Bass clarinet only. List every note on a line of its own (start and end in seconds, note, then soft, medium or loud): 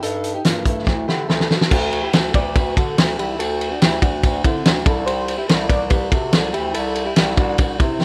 0.03 0.37 G2 loud
0.45 0.62 G2 medium
0.66 0.83 G2 loud
0.87 1.04 D2 medium
1.08 1.26 D3 medium
1.29 1.47 D2 medium
1.72 2.06 D2 loud
2.14 2.31 D2 loud
2.34 2.52 D2 loud
2.56 2.73 D2 loud
2.77 2.94 D3 medium
2.98 3.15 D2 loud
3.19 3.42 C2 loud
3.40 3.74 D2 loud
3.82 3.99 D2 loud
4.02 4.19 D2 loud
4.24 4.41 D2 loud
4.45 4.62 D3 loud
4.66 4.83 D2 loud
4.86 5.38 C2 loud
5.50 5.67 C2 loud
5.70 5.87 C2 loud
5.91 6.08 C2 loud
6.12 6.29 C3 loud
6.34 6.51 C2 loud
6.55 6.72 D2 loud
6.76 7.10 C2 loud
7.18 7.35 C2 loud
7.37 7.55 C2 loud
7.59 7.76 C2 loud
7.80 7.97 C3 loud
8.01 8.05 C2 medium